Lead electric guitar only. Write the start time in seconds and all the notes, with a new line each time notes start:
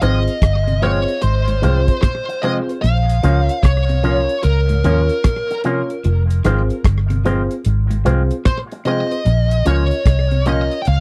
0.02 D#5
0.82 C#5
1.22 C5
2.02 C5
2.42 D#5
2.82 F5
3.63 C#5
4.44 A#4
8.46 C5
8.86 D#5
9.67 C#5
10.47 D#5
10.82 G5
10.88 F5